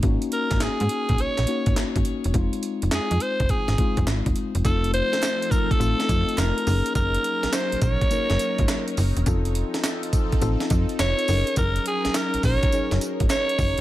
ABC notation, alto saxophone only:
X:1
M:4/4
L:1/16
Q:"Swing 16ths" 1/4=104
K:Fphr
V:1 name="Alto saxophone"
z2 B2 A4 d4 z4 | z4 A2 c2 A4 z4 | =A2 c4 B A4- A B4 | B4 c2 d8 z2 |
z12 d4 | B2 A2 B2 d4 z2 d4 |]